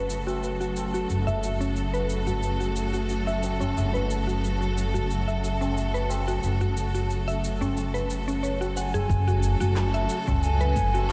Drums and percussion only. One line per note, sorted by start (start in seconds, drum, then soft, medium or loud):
0.10 cabasa medium
0.27 tabla na medium
0.27 cabasa soft
0.44 cabasa soft
0.61 cabasa soft
0.76 tabla na medium
0.76 cabasa medium
0.93 tabla tin medium
0.93 cabasa soft
1.10 cabasa soft
1.27 tabla ge medium
1.27 cabasa soft
1.43 cabasa medium
1.61 cabasa soft
1.76 cabasa soft
1.94 cabasa soft
2.10 cabasa medium
2.27 tabla ge medium
2.27 cabasa soft
2.43 cabasa soft
2.61 tabla na soft
2.61 cabasa soft
2.76 tabla tin soft
2.76 cabasa medium
2.94 cabasa soft
3.09 cabasa soft
3.28 tabla na soft
3.28 tabla tin soft
3.28 cabasa soft
3.43 tabla tin medium
3.43 cabasa medium
3.61 tabla na medium
3.61 tabla ge medium
3.61 cabasa soft
3.77 cabasa soft
3.95 tabla ge medium
3.95 cabasa soft
4.11 cabasa medium
4.29 cabasa soft
4.44 cabasa soft
4.62 cabasa soft
4.76 tabla tin soft
4.76 cabasa medium
4.95 tabla ge medium
4.95 cabasa soft
5.11 cabasa soft
5.29 cabasa soft
5.44 cabasa medium
5.61 tabla na soft
5.61 cabasa soft
5.77 cabasa soft
5.95 cabasa soft
6.10 tabla na medium
6.10 cabasa medium
6.27 tabla tin medium
6.27 cabasa soft
6.43 cabasa soft
6.61 tabla ge medium
6.61 cabasa soft
6.77 cabasa medium
6.95 cabasa soft
7.10 cabasa soft
7.28 cabasa soft
7.43 tabla tin soft
7.43 cabasa medium
7.61 tabla na medium
7.61 tabla ge medium
7.61 cabasa soft
7.77 cabasa soft
7.94 tabla na soft
7.94 cabasa soft
8.10 tabla tin medium
8.10 cabasa medium
8.28 cabasa soft
8.44 cabasa soft
8.60 tabla na soft
8.60 tabla tin soft
8.60 cabasa soft
8.76 tabla tin medium
8.76 cabasa medium
8.94 tabla na medium
8.94 tabla ge medium
8.94 cabasa soft
9.10 kick loud
9.10 cabasa soft
9.27 tabla ge medium
9.27 cabasa soft
9.43 cabasa medium
9.61 cabasa soft
9.76 clap loud
9.76 cabasa soft
9.94 cabasa soft
10.09 cabasa medium
10.27 kick medium
10.27 tabla na medium
10.27 tabla tin medium
10.27 tabla ge medium
10.27 cabasa soft
10.43 cabasa soft
10.61 cabasa soft
10.76 kick loud
10.76 cabasa medium
10.94 tabla na medium
10.94 cabasa soft